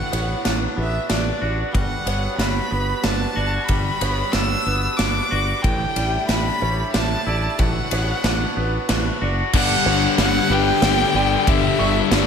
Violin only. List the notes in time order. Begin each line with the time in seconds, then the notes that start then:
Already playing: F#5
0.80 E5
1.10 D5
1.73 F#5
2.38 B5
3.03 A5
3.66 B5
4.32 E6
4.96 D6
5.62 G5
6.28 B5
6.93 A5
7.59 F#5
9.55 F#5
10.21 F#5
10.52 G5
11.49 E5
12.12 D5